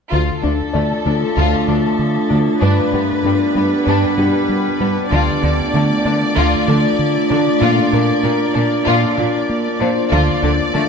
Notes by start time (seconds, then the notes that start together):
0.12 D2 D3 A3 D4 F4 A4 D5
0.43 D2 D4
0.73 D2 D3 A3 D5
1.06 D2 D3 A3 D4
1.37 D2 D3 F4
1.68 D2 D3 A3 D4
1.99 D3
2.30 D2 D3 A3 D4
2.62 G2 G3 B3 D4 G4 B4
2.93 G2 B3 G4
3.24 G2 G3 D4
3.55 G2 G3 B3 D4
3.87 G2 G3 D4
4.18 G2 G3 B3 D4 G4
4.49 G3
4.80 G2 G3 B3 D4
5.11 D2 D3 A3 D4 F4 D5
5.43 D2 D3 D4
5.74 D3 A3
6.05 D3 A3 D4
6.36 D2 D3 F4
6.68 D3 A3 D4
6.99 D3
7.30 D3 A3 D4
7.61 A#2 A#3 F4
7.92 A#2 D4 A#4
8.23 A#2 A#3 F4 A#4
8.54 A#2 A#3 D4 F4
8.86 A#2 A#3 F4
9.17 A#2 A#3 D4 F4
9.50 A#3
9.80 A#2 A#3 D4 F4 C5
10.12 D2 D3 A3 D4 F4 D5
10.43 D2 D3 D4
10.74 D3 A3